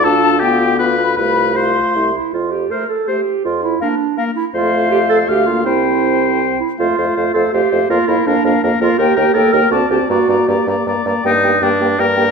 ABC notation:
X:1
M:3/4
L:1/8
Q:1/4=162
K:F
V:1 name="Flute"
a2 g2 =b2 | =b2 c'3 z | z2 c2 c2 | z2 f2 f2 |
f4 f2 | g4- g z | f f f f f f | f f f f f f |
[K:Gm] g g g g a a | b b b b b b | g g g g g g |]
V:2 name="Oboe"
A2 G2 =B2 | =B2 c3 z | z2 c2 c2 | z2 B2 B2 |
c4 f2 | c4- c z | c c c c c c | B B B B B B |
[K:Gm] B B B B d d | d d d d d d | E2 D2 B2 |]
V:3 name="Clarinet"
D2 =B,3 z | A,4- A, E | F G B A G2 | F E D2 z E |
F2 G A G F | E4 z E | F3 A G2 | F E D2 z F |
[K:Gm] G2 A B ^F G | ^F2 G2 z2 | G G G G G G |]
V:4 name="French horn"
F2 F2 F2 | F2 F2 E z | z2 A,2 A,2 | z2 B,2 B,2 |
A,4 A, B, | C4- C z | A, A, A, A, A, A, | B, B, B, B, B, B, |
[K:Gm] B, B, B, B, C C | B, B, B, B, B, B, | B, B, B, B, B, B, |]
V:5 name="Bassoon" clef=bass
D,,6 | C,,4 C,, z | F,,2 z4 | F,,2 z4 |
F,,4 D,,2 | C,,4- C,, z | F,, F,, F,, F,, F,, F,, | F,, F,, F,, F,, F,, F,, |
[K:Gm] E,, E,, E,, E,, D,, D,, | G,, G,, G,, G,, G,, G,, | G,,2 G,,2 G,,2 |]